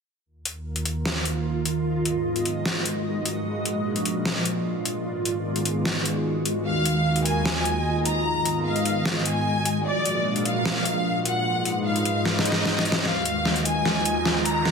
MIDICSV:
0, 0, Header, 1, 7, 480
1, 0, Start_track
1, 0, Key_signature, -6, "minor"
1, 0, Tempo, 400000
1, 306, Time_signature, 4, 2, 24, 8
1, 17656, End_track
2, 0, Start_track
2, 0, Title_t, "Violin section"
2, 0, Program_c, 0, 48
2, 7986, Note_on_c, 0, 77, 93
2, 8613, Note_off_c, 0, 77, 0
2, 8706, Note_on_c, 0, 80, 91
2, 9573, Note_off_c, 0, 80, 0
2, 9666, Note_on_c, 0, 82, 89
2, 10293, Note_off_c, 0, 82, 0
2, 10386, Note_on_c, 0, 77, 84
2, 11013, Note_off_c, 0, 77, 0
2, 11106, Note_on_c, 0, 80, 89
2, 11733, Note_off_c, 0, 80, 0
2, 11826, Note_on_c, 0, 74, 99
2, 12453, Note_off_c, 0, 74, 0
2, 12546, Note_on_c, 0, 77, 93
2, 13413, Note_off_c, 0, 77, 0
2, 13506, Note_on_c, 0, 78, 96
2, 14132, Note_off_c, 0, 78, 0
2, 14226, Note_on_c, 0, 77, 87
2, 14853, Note_off_c, 0, 77, 0
2, 14946, Note_on_c, 0, 75, 93
2, 15573, Note_off_c, 0, 75, 0
2, 15666, Note_on_c, 0, 77, 91
2, 16293, Note_off_c, 0, 77, 0
2, 16385, Note_on_c, 0, 80, 93
2, 17252, Note_off_c, 0, 80, 0
2, 17346, Note_on_c, 0, 82, 92
2, 17656, Note_off_c, 0, 82, 0
2, 17656, End_track
3, 0, Start_track
3, 0, Title_t, "Ambient pad"
3, 0, Program_c, 1, 92
3, 1173, Note_on_c, 1, 75, 75
3, 4146, Note_off_c, 1, 75, 0
3, 6933, Note_on_c, 1, 75, 62
3, 11826, Note_off_c, 1, 75, 0
3, 13993, Note_on_c, 1, 75, 75
3, 17656, Note_off_c, 1, 75, 0
3, 17656, End_track
4, 0, Start_track
4, 0, Title_t, "Analog synth pad"
4, 0, Program_c, 2, 89
4, 306, Note_on_c, 2, 39, 79
4, 307, Note_on_c, 2, 51, 74
4, 307, Note_on_c, 2, 58, 70
4, 307, Note_on_c, 2, 65, 68
4, 307, Note_on_c, 2, 70, 85
4, 2207, Note_off_c, 2, 39, 0
4, 2207, Note_off_c, 2, 58, 0
4, 2207, Note_off_c, 2, 65, 0
4, 2207, Note_off_c, 2, 70, 0
4, 2226, Note_on_c, 2, 44, 80
4, 2226, Note_on_c, 2, 68, 69
4, 2227, Note_on_c, 2, 59, 70
4, 2227, Note_on_c, 2, 75, 87
4, 4108, Note_off_c, 2, 51, 0
4, 4127, Note_off_c, 2, 44, 0
4, 4127, Note_off_c, 2, 59, 0
4, 4127, Note_off_c, 2, 68, 0
4, 4127, Note_off_c, 2, 75, 0
4, 4146, Note_on_c, 2, 46, 82
4, 4146, Note_on_c, 2, 53, 73
4, 4146, Note_on_c, 2, 62, 73
4, 4146, Note_on_c, 2, 70, 71
4, 4146, Note_on_c, 2, 77, 85
4, 6047, Note_off_c, 2, 46, 0
4, 6047, Note_off_c, 2, 53, 0
4, 6047, Note_off_c, 2, 62, 0
4, 6047, Note_off_c, 2, 70, 0
4, 6047, Note_off_c, 2, 77, 0
4, 6065, Note_on_c, 2, 68, 76
4, 6065, Note_on_c, 2, 75, 88
4, 6066, Note_on_c, 2, 44, 82
4, 6066, Note_on_c, 2, 51, 74
4, 6066, Note_on_c, 2, 59, 73
4, 7966, Note_off_c, 2, 68, 0
4, 7967, Note_off_c, 2, 44, 0
4, 7967, Note_off_c, 2, 59, 0
4, 7967, Note_off_c, 2, 75, 0
4, 7986, Note_on_c, 2, 39, 78
4, 7986, Note_on_c, 2, 58, 73
4, 7986, Note_on_c, 2, 65, 70
4, 7986, Note_on_c, 2, 70, 89
4, 9867, Note_off_c, 2, 51, 0
4, 9887, Note_off_c, 2, 39, 0
4, 9887, Note_off_c, 2, 58, 0
4, 9887, Note_off_c, 2, 65, 0
4, 9887, Note_off_c, 2, 70, 0
4, 9905, Note_on_c, 2, 68, 71
4, 9906, Note_on_c, 2, 44, 78
4, 9906, Note_on_c, 2, 51, 71
4, 9906, Note_on_c, 2, 59, 72
4, 9906, Note_on_c, 2, 75, 92
4, 11806, Note_off_c, 2, 68, 0
4, 11807, Note_off_c, 2, 44, 0
4, 11807, Note_off_c, 2, 51, 0
4, 11807, Note_off_c, 2, 59, 0
4, 11807, Note_off_c, 2, 75, 0
4, 11826, Note_on_c, 2, 46, 81
4, 11826, Note_on_c, 2, 62, 74
4, 11826, Note_on_c, 2, 70, 72
4, 11826, Note_on_c, 2, 77, 89
4, 11827, Note_on_c, 2, 53, 74
4, 13727, Note_off_c, 2, 46, 0
4, 13727, Note_off_c, 2, 53, 0
4, 13727, Note_off_c, 2, 62, 0
4, 13727, Note_off_c, 2, 70, 0
4, 13727, Note_off_c, 2, 77, 0
4, 13745, Note_on_c, 2, 44, 78
4, 13745, Note_on_c, 2, 56, 75
4, 13745, Note_on_c, 2, 63, 74
4, 13746, Note_on_c, 2, 71, 74
4, 13746, Note_on_c, 2, 75, 84
4, 15646, Note_off_c, 2, 44, 0
4, 15646, Note_off_c, 2, 56, 0
4, 15646, Note_off_c, 2, 63, 0
4, 15647, Note_off_c, 2, 71, 0
4, 15647, Note_off_c, 2, 75, 0
4, 15665, Note_on_c, 2, 58, 72
4, 15665, Note_on_c, 2, 70, 89
4, 15666, Note_on_c, 2, 39, 84
4, 15666, Note_on_c, 2, 51, 75
4, 15666, Note_on_c, 2, 65, 74
4, 17566, Note_off_c, 2, 58, 0
4, 17566, Note_off_c, 2, 70, 0
4, 17567, Note_off_c, 2, 39, 0
4, 17567, Note_off_c, 2, 65, 0
4, 17586, Note_on_c, 2, 44, 80
4, 17586, Note_on_c, 2, 59, 72
4, 17656, Note_off_c, 2, 44, 0
4, 17656, Note_off_c, 2, 51, 0
4, 17656, Note_off_c, 2, 59, 0
4, 17656, End_track
5, 0, Start_track
5, 0, Title_t, "Riser"
5, 0, Program_c, 3, 103
5, 15666, Note_on_c, 3, 60, 74
5, 17656, Note_off_c, 3, 60, 0
5, 17656, End_track
6, 0, Start_track
6, 0, Title_t, "Swell"
6, 0, Program_c, 4, 103
6, 14706, Note_on_c, 4, 60, 70
6, 15666, Note_off_c, 4, 60, 0
6, 17656, End_track
7, 0, Start_track
7, 0, Title_t, "Drums"
7, 546, Note_on_c, 9, 42, 72
7, 666, Note_off_c, 9, 42, 0
7, 909, Note_on_c, 9, 42, 32
7, 1026, Note_off_c, 9, 42, 0
7, 1026, Note_on_c, 9, 42, 75
7, 1146, Note_off_c, 9, 42, 0
7, 1266, Note_on_c, 9, 38, 105
7, 1386, Note_off_c, 9, 38, 0
7, 1506, Note_on_c, 9, 42, 73
7, 1626, Note_off_c, 9, 42, 0
7, 1986, Note_on_c, 9, 42, 69
7, 2106, Note_off_c, 9, 42, 0
7, 2466, Note_on_c, 9, 42, 73
7, 2586, Note_off_c, 9, 42, 0
7, 2829, Note_on_c, 9, 42, 33
7, 2946, Note_off_c, 9, 42, 0
7, 2946, Note_on_c, 9, 42, 72
7, 3066, Note_off_c, 9, 42, 0
7, 3186, Note_on_c, 9, 38, 105
7, 3306, Note_off_c, 9, 38, 0
7, 3426, Note_on_c, 9, 42, 73
7, 3546, Note_off_c, 9, 42, 0
7, 3906, Note_on_c, 9, 42, 74
7, 4026, Note_off_c, 9, 42, 0
7, 4386, Note_on_c, 9, 42, 74
7, 4506, Note_off_c, 9, 42, 0
7, 4749, Note_on_c, 9, 42, 31
7, 4866, Note_off_c, 9, 42, 0
7, 4866, Note_on_c, 9, 42, 76
7, 4986, Note_off_c, 9, 42, 0
7, 5106, Note_on_c, 9, 38, 109
7, 5226, Note_off_c, 9, 38, 0
7, 5346, Note_on_c, 9, 42, 71
7, 5466, Note_off_c, 9, 42, 0
7, 5826, Note_on_c, 9, 42, 70
7, 5946, Note_off_c, 9, 42, 0
7, 6306, Note_on_c, 9, 42, 74
7, 6426, Note_off_c, 9, 42, 0
7, 6669, Note_on_c, 9, 42, 31
7, 6786, Note_off_c, 9, 42, 0
7, 6786, Note_on_c, 9, 42, 69
7, 6906, Note_off_c, 9, 42, 0
7, 7026, Note_on_c, 9, 38, 105
7, 7146, Note_off_c, 9, 38, 0
7, 7266, Note_on_c, 9, 42, 70
7, 7386, Note_off_c, 9, 42, 0
7, 7746, Note_on_c, 9, 42, 68
7, 7866, Note_off_c, 9, 42, 0
7, 8226, Note_on_c, 9, 42, 70
7, 8346, Note_off_c, 9, 42, 0
7, 8589, Note_on_c, 9, 42, 29
7, 8706, Note_off_c, 9, 42, 0
7, 8706, Note_on_c, 9, 42, 72
7, 8826, Note_off_c, 9, 42, 0
7, 8946, Note_on_c, 9, 38, 105
7, 9066, Note_off_c, 9, 38, 0
7, 9186, Note_on_c, 9, 42, 69
7, 9306, Note_off_c, 9, 42, 0
7, 9666, Note_on_c, 9, 42, 68
7, 9786, Note_off_c, 9, 42, 0
7, 10146, Note_on_c, 9, 42, 70
7, 10266, Note_off_c, 9, 42, 0
7, 10509, Note_on_c, 9, 42, 31
7, 10626, Note_off_c, 9, 42, 0
7, 10626, Note_on_c, 9, 42, 71
7, 10746, Note_off_c, 9, 42, 0
7, 10866, Note_on_c, 9, 38, 106
7, 10986, Note_off_c, 9, 38, 0
7, 11106, Note_on_c, 9, 42, 70
7, 11226, Note_off_c, 9, 42, 0
7, 11586, Note_on_c, 9, 42, 67
7, 11706, Note_off_c, 9, 42, 0
7, 12066, Note_on_c, 9, 42, 71
7, 12186, Note_off_c, 9, 42, 0
7, 12429, Note_on_c, 9, 42, 30
7, 12546, Note_off_c, 9, 42, 0
7, 12546, Note_on_c, 9, 42, 74
7, 12666, Note_off_c, 9, 42, 0
7, 12786, Note_on_c, 9, 38, 100
7, 12906, Note_off_c, 9, 38, 0
7, 13026, Note_on_c, 9, 42, 70
7, 13146, Note_off_c, 9, 42, 0
7, 13506, Note_on_c, 9, 42, 72
7, 13626, Note_off_c, 9, 42, 0
7, 13986, Note_on_c, 9, 42, 71
7, 14106, Note_off_c, 9, 42, 0
7, 14349, Note_on_c, 9, 42, 33
7, 14466, Note_off_c, 9, 42, 0
7, 14466, Note_on_c, 9, 42, 74
7, 14586, Note_off_c, 9, 42, 0
7, 14706, Note_on_c, 9, 38, 62
7, 14826, Note_off_c, 9, 38, 0
7, 14866, Note_on_c, 9, 38, 69
7, 14946, Note_on_c, 9, 42, 74
7, 14986, Note_off_c, 9, 38, 0
7, 15026, Note_on_c, 9, 38, 76
7, 15066, Note_off_c, 9, 42, 0
7, 15146, Note_off_c, 9, 38, 0
7, 15186, Note_on_c, 9, 38, 83
7, 15306, Note_off_c, 9, 38, 0
7, 15346, Note_on_c, 9, 38, 87
7, 15426, Note_on_c, 9, 42, 70
7, 15466, Note_off_c, 9, 38, 0
7, 15506, Note_on_c, 9, 38, 93
7, 15546, Note_off_c, 9, 42, 0
7, 15626, Note_off_c, 9, 38, 0
7, 15666, Note_on_c, 9, 38, 45
7, 15786, Note_off_c, 9, 38, 0
7, 15906, Note_on_c, 9, 42, 80
7, 16026, Note_off_c, 9, 42, 0
7, 16146, Note_on_c, 9, 38, 47
7, 16266, Note_off_c, 9, 38, 0
7, 16269, Note_on_c, 9, 42, 34
7, 16386, Note_off_c, 9, 42, 0
7, 16386, Note_on_c, 9, 42, 78
7, 16506, Note_off_c, 9, 42, 0
7, 16626, Note_on_c, 9, 38, 46
7, 16746, Note_off_c, 9, 38, 0
7, 16866, Note_on_c, 9, 42, 77
7, 16986, Note_off_c, 9, 42, 0
7, 17106, Note_on_c, 9, 38, 51
7, 17226, Note_off_c, 9, 38, 0
7, 17346, Note_on_c, 9, 42, 73
7, 17466, Note_off_c, 9, 42, 0
7, 17586, Note_on_c, 9, 38, 49
7, 17656, Note_off_c, 9, 38, 0
7, 17656, End_track
0, 0, End_of_file